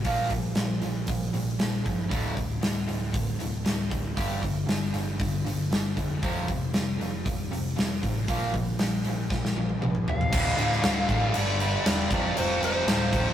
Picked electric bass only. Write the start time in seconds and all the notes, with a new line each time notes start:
0.06 A#1
0.31 A#1
0.56 A#1
0.84 A#1
1.08 A#1
1.34 A#1
1.61 A#1
1.86 G1
2.12 D1
2.37 D1
2.62 D1
2.88 D1
3.15 D1
3.40 D1
3.66 D1
3.92 D1
4.17 G1
4.43 G1
4.68 G1
4.94 G1
5.20 G1
5.46 G1
5.72 G1
5.97 F1
6.23 F1
6.49 F1
6.76 F1
7.00 F1
7.26 F1
7.51 F1
7.77 F1
8.03 A1
8.28 A#1
8.54 A#1
8.81 A#1
9.06 A#1
9.31 A#1
9.55 A#1
9.81 A#1
10.07 E2
10.32 D1
10.57 D1
10.84 D1
11.09 A1
11.36 G1
11.86 E1
12.11 F1
12.38 F1
12.62 F1
12.86 D1